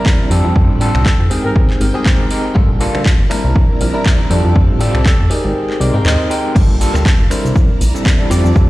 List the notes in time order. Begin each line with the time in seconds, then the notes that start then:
Already playing: D4 E4 A#4 D5 A#5
0.05 G3 C4 D4 E4 A#4, kick, clap
0.30 F2 G3 C4 D4 F4 G4 A4 G5, open hi-hat
0.44 F2
0.55 F2 G3 C4 A4, kick
0.69 A2
0.80 G3 C4 D4 F4 G4 A4, open hi-hat
0.95 C2, finger snap
1.05 A4, kick, clap
1.20 F2
1.30 G#3 C4 D#4 G4 G#4 A#4 G5, open hi-hat
1.45 G#1 A#4
1.56 A#4, kick
1.70 clap
1.80 G#1 G#3 C4 D#4 G4 A#4, open hi-hat
1.94 C4 G4 G#4
2.05 G#3 C4 D#4 G4 A#4, kick, clap
2.31 G#3 C4 D#4 G4 A#4, open hi-hat
2.55 G1 G3 A#3 D4 F4 A4 A5, kick
2.69 A#1
2.80 G3 A#3 D4 F4 A4, open hi-hat
2.94 D2, finger snap
3.06 kick, clap
3.19 G1
3.30 G3 C4 D4 E4 A#4 D5 A#5, finger snap, open hi-hat
3.44 C2
3.56 kick
3.80 A#1 G3 C4 D4 E4 A#4, open hi-hat
3.94 D4 E4 A#4
4.06 G3 C4 D4 E4 A#4, kick, clap
4.30 F2 G3 C4 D4 F4 G4 A4 A5, open hi-hat
4.45 F2
4.55 F2 G3 C4 D4 F4 A4, kick
4.69 A2
4.80 G3 C4 D4 F4 G4 A4, open hi-hat
4.94 C2, finger snap
5.06 A4, kick, clap
5.19 F2
5.30 G#3 C4 D#4 G4 G#4 A#4 G5 C6, open hi-hat
5.44 G#1
5.70 clap
5.80 C2 G#3 C4 D#4 G4 A#4 D5, open hi-hat
5.94 G#2 C4 G4 A#4
6.05 D#2 G#3 C4 D#4 G4 A#4 D#5, clap
6.30 G#3 C4 D#4 G4 A#4 G5, open hi-hat
6.55 G1 G3 A#3 F4 G4 A4 F5, kick, crash, ride, shaker
6.69 A#1
6.80 G3 A#3 D4 F4 A4, open hi-hat, shaker
6.94 D2 A#3 F4 G4 A4, finger snap, shaker
7.06 kick, clap, ride, shaker
7.19 G1
7.30 G3 C4 D4 E4 A#4 C5 D5 A#5, finger snap, open hi-hat, shaker
7.45 C2, shaker
7.56 kick, ride, shaker
7.69 muted clean electric guitar stroke
7.81 A#1, open hi-hat, shaker
7.94 G3 C4 D4 E4 A4, shaker
8.05 G3 C4 D4 E4 A#4, kick, clap, ride, shaker
8.19 G3 C4 D4 E4 A4
8.30 F2 G3 C4 D4 F4 G4 A4 D5 A5, open hi-hat, shaker
8.45 F2, shaker
8.55 F2 G3 C4 D4 F4 A4, kick, ride, shaker